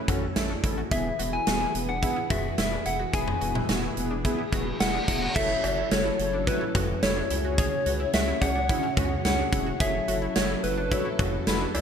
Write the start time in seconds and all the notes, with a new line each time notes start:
Already playing: A3 C#4 E4
0.08 A1 C#4 E4 F#4 A4, kick, closed hi-hat, mid tom
0.36 A1 C#4 E4 A4, snare, closed hi-hat
0.50 D4
0.64 A1 C#4 E4 A4, kick, closed hi-hat
0.78 F#4
0.91 E1 E3 B3 E4 G#4 B4 E5, kick, closed hi-hat
1.19 E1 B3 E4 F#4 G#4, closed hi-hat
1.33 E4 G#5
1.47 E1 B3 E4 F#4 G#4, snare, closed hi-hat
1.61 E4
1.75 E1 B3 E4 G#4, closed hi-hat
1.89 D4 F#5
2.02 B3 E4 G#4, kick, closed hi-hat
2.16 E4
2.30 E1 B3 E4 F#4 G#4 E5, kick, closed hi-hat, mid tom
2.58 E1 B3 E4 B4 E5, snare, closed hi-hat
2.72 D4
2.86 E1 B3 E4 G#4 F#5, closed hi-hat
3.00 F#4
3.13 E1 B3 E4 G#4 B4 G#5, kick, closed hi-hat
3.28 mid tom
3.41 E1 B3 E4 F#4 G#4, closed hi-hat
3.55 E4, mid tom
3.69 E1 B3 E4 F#4 G#4, snare, closed hi-hat
3.83 E4
3.97 E1 B3 E4 G#4, closed hi-hat
4.11 D4
4.25 B3 E4 G#4, kick, closed hi-hat, reverse cymbal
4.39 E4
4.52 E1 B3 E4 F#4 G#4, kick, closed hi-hat
4.80 E1 B3 E4 G#4 F#5, snare, closed hi-hat
4.94 D4
5.08 E1 B3 E4 G#4 F#5, kick, closed hi-hat
5.22 F#4
5.36 F#1 F#3 C#4 E4 F#4 A4 C#5 E5, kick, crash, impact
5.64 F#1 E4 F#4 A4, closed hi-hat, cowbell
5.78 E4
5.91 F#1 E4 F#4 A4 B4 C#5, snare, closed hi-hat
6.05 E4
6.19 F#1 E4 F#4 A4 C#5, closed hi-hat
6.33 D4
6.47 E4 F#4 A4 B4 C#5, kick, closed hi-hat
6.61 E4
6.75 F#1 E4 F#4 A4 C#5, kick, closed hi-hat, mid tom
7.03 F#1 E4 F#4 A4 C#5, snare, closed hi-hat
7.17 D4
7.30 C#2 C#3 C#4 E4 F#4 G#4 C#5, closed hi-hat
7.45 F#4
7.58 G#4 C#5, kick, closed hi-hat
7.86 C#2 C#4 F#4 G#4 B4, closed hi-hat
8.00 E4
8.13 C#2 C#4 F#4 G#4 C#5 E5, snare, closed hi-hat
8.28 E4
8.41 C#2 C#4 F#4 G#4 C#5 F#5, kick, closed hi-hat, cowbell
8.55 D4
8.69 C#4 E4 F#4 G#4 C#5, kick, closed hi-hat
8.83 E4
8.97 C#2 C#4 F#4 G#4 C#5, kick, closed hi-hat, mid tom
9.25 C#2 C#4 E4 F#4 G#4 C#5 F#5, snare, closed hi-hat
9.39 D4
9.52 E1 C#4 E4 F#4 G#4 C#5, kick, closed hi-hat
9.66 F#4
9.80 F#1 F#3 E4 F#4 G#4 A4 C#5 E5, kick, closed hi-hat
10.08 F#1 E4 F#4 A4 C#5, closed hi-hat
10.22 E4
10.36 F#1 E4 F#4 A4 C#5 E5, snare, closed hi-hat
10.50 E4
10.64 F#1 E4 F#4 A4 B4 C#5, closed hi-hat
10.78 D4
10.91 E4 F#4 A4 C#5, kick, closed hi-hat
11.05 E4
11.19 F#1 E4 F#4 A4 C#5, kick, closed hi-hat, mid tom
11.47 F#1 E4 F#4 A4 B4, snare, closed hi-hat
11.61 D4
11.75 C#2 E4 F#4 A4 E5, closed hi-hat, cowbell